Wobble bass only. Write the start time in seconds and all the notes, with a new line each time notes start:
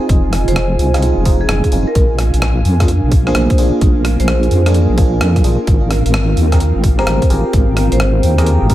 0.09 F1
0.48 F1
0.79 C2
1.17 F1
1.49 F1
1.72 F1
1.95 A#1
2.34 A#1
2.65 F2
3.04 A#1
3.35 A#1
3.58 A#1
3.81 A#1
4.20 A#1
4.51 F2
4.90 A#1
5.21 F2
5.44 A#1
5.67 G#1
6.06 G#1
6.37 D#2
6.76 G#1
7.07 G#1
7.30 G#1
7.53 G#1
7.92 G#1
8.23 D#2
8.62 G#1